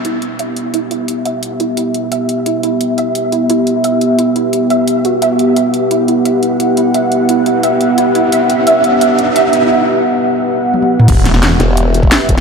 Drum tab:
CC |----------------|----------------|----------------|----------------|
HH |x-x-x-x-x-x-x-x-|x-x-x-x-x-x-x-x-|x-x-x-x-x-x-x-x-|x-x-x-x-x-x-x-x-|
SD |----------------|----------------|----------------|----------------|
T1 |----------------|----------------|----------------|----------------|
T2 |----------------|----------------|----------------|----------------|
BD |----------------|----------------|----------------|----------------|

CC |----------------|----------------|----------------|----------------|
HH |x-x-x-x-x-x-x-x-|x-x-x-x-x-x-x-x-|x-x-x-x-x-x-x-x-|----------------|
SD |----------------|----------------|----------------|----------------|
T1 |----------------|----------------|----------------|------------oo--|
T2 |----------------|----------------|----------------|---------------o|
BD |----------------|----------------|----------------|----------------|

CC |x---------------|
HH |x-x-x-x-x-x-x-x-|
SD |--ooo-o-----o---|
T1 |----------------|
T2 |----------------|
BD |o----------o--o-|